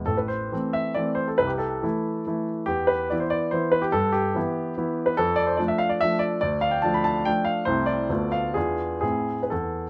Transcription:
0.06 A1 A4
0.17 B4
0.28 C5
0.52 E3 A3 C4
0.73 E5
0.95 E3 A3 C4 D5
1.15 C5
1.28 A4
1.38 C2 B4
1.47 G4
1.58 A4
1.83 E3 A3 E4
2.27 E3 A3 E4
2.66 E2 G4
2.87 B4
3.10 E3 B3 E4 D5
3.20 C5
3.30 D5
3.51 E3 B3 E4 C5
3.72 B4
3.82 G4
3.92 G2 A4
4.12 G4
4.35 E3 B3 E4
4.77 E3 B3 E4
5.06 B4
5.17 F2 A4
5.36 D5
5.47 C5
5.57 F3 A3 D4 D5
5.68 E5
5.78 F5
5.89 D5
6.01 F3 A3 D4 E5
6.19 D5
6.41 D2 D5
6.61 F5
6.71 G5
6.82 F3 A3 D4 A5
6.94 B5
7.04 A5
7.25 F3 A3 D4 G5
7.45 F5
7.65 C2 A3 C4 E4 C5
7.86 D5
8.09 D2 A3 B3 F4
8.32 F5
8.54 E2 E3 D4 F4 G#4
9.01 A2 C4 E4 G#4
9.43 B4
9.50 E2 A4

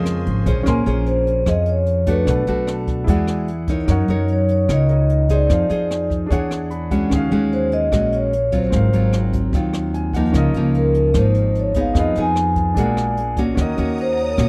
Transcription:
Already playing: F2 C#3 F3 G#3 C4 C#4 G#4 A#4 C5 C#5 D#5 F5 G#5 C6
0.05 cross-stick, closed hi-hat
0.26 G#1, closed hi-hat
0.46 A#1 C#4 G#4 C5, kick, closed hi-hat
0.63 A#1 A#3 C#4 A#4, kick, cross-stick, closed hi-hat
0.68 G#5 C6
0.86 A#1 C#4 G#4 C5, closed hi-hat
1.06 C5, closed hi-hat
1.27 closed hi-hat
1.46 F2 F3 C#4 G#4 D#5, kick, cross-stick, closed hi-hat
1.66 C#5, closed hi-hat
1.86 closed hi-hat
2.06 A3 D4 F#4 B4, kick, closed hi-hat
2.24 B1 B2 D4 A4 B4, kick, cross-stick, closed hi-hat
2.30 F#5
2.47 B1 A3 D4 F#4, closed hi-hat
2.67 cross-stick, closed hi-hat
2.87 kick, closed hi-hat
3.04 E2 E4 G#4 D5, kick, closed hi-hat
3.08 E3 G#3 D4 F#4 F#5
3.27 cross-stick, closed hi-hat
3.48 closed hi-hat
3.67 D#4 A#4 C#5, kick, closed hi-hat
3.86 F#2 F#3 D#4 A#4, kick, cross-stick, closed hi-hat
3.90 C#5 F#5
4.08 F#2 D#4 A#4 C#5, closed hi-hat
4.28 closed hi-hat
4.33 C#5
4.48 C#5, closed hi-hat
4.69 C#2 C#3 D#4 A#4 C#5 D#5, kick, cross-stick, closed hi-hat
4.88 D#4 A#4 C#5 D#5, closed hi-hat
5.09 closed hi-hat
5.29 D#4 G#4 C5 D5, kick, closed hi-hat
5.47 F2 F3 D#4 G#4, kick, cross-stick, closed hi-hat
5.51 C5 F5
5.70 F2 D#4 G#4 C5, closed hi-hat
5.91 cross-stick, closed hi-hat
6.10 kick, closed hi-hat
6.26 D4 G#4
6.30 E2 E3 D4 G#4 C#5 F#5, kick, closed hi-hat
6.51 cross-stick, closed hi-hat
6.70 B5, closed hi-hat
6.91 G#3 C#4 F#4 F#5, kick, closed hi-hat
7.09 D#2 D#3 C#4 F#4 G#4, kick, cross-stick, closed hi-hat
7.16 F5
7.31 D#2 G#3 C#4 F#4, closed hi-hat
7.52 C5, closed hi-hat
7.72 D#5, closed hi-hat
7.92 A#1 A#2 G#3 C#4 F#4, kick, cross-stick, closed hi-hat
8.12 C#5, closed hi-hat
8.33 C#5, closed hi-hat
8.52 F#3 C4 F4 C5, kick, closed hi-hat
8.70 G#1 G#2 C4, kick, cross-stick, closed hi-hat
8.75 A#4 F5
8.93 G#1 F#3 C4 F4, closed hi-hat
9.13 cross-stick, closed hi-hat
9.33 kick, closed hi-hat
9.53 D#2 D#3 F#3 C4 F4, kick, closed hi-hat
9.73 cross-stick, closed hi-hat
9.94 G#5, closed hi-hat
10.13 F3 A#3 D#4 F#5, kick, closed hi-hat
10.32 C#2 C#3 C#4 F4 A#4, kick, cross-stick, closed hi-hat
10.37 D#5
10.54 C#2 F3 A#3 D#4, closed hi-hat
10.74 A#4, closed hi-hat
10.94 closed hi-hat
11.14 G#1 G#2 F3 A#3 D#4, kick, cross-stick, closed hi-hat
11.18 C5
11.34 closed hi-hat
11.55 closed hi-hat
11.60 C#5
11.74 B3 D#4 G#4, kick, closed hi-hat
11.80 F5
11.94 F2 F3 D#4 G#4, kick, cross-stick, closed hi-hat
11.98 B4 D#5 F5
12.15 F2 B3 D#4 G#4, closed hi-hat
12.21 G#5
12.36 cross-stick, closed hi-hat
12.56 kick, closed hi-hat
12.74 A#1 A#2 G#3 D4 F#4 G#4 A#4, kick, closed hi-hat
12.80 F#5
12.97 cross-stick, closed hi-hat
13.17 closed hi-hat
13.37 A#3 C#4 F#4, kick, closed hi-hat
13.55 D#2 D#3 C#4 F#4 A#4 F#5 A#5 D#6, kick, cross-stick, closed hi-hat
13.61 D#5
13.78 D#2 A#3 C#4 F#4, closed hi-hat
13.98 C5, closed hi-hat
14.17 closed hi-hat
14.22 C#5
14.37 A#1 A#2 A#3 C#4 F#4, kick, cross-stick, closed hi-hat

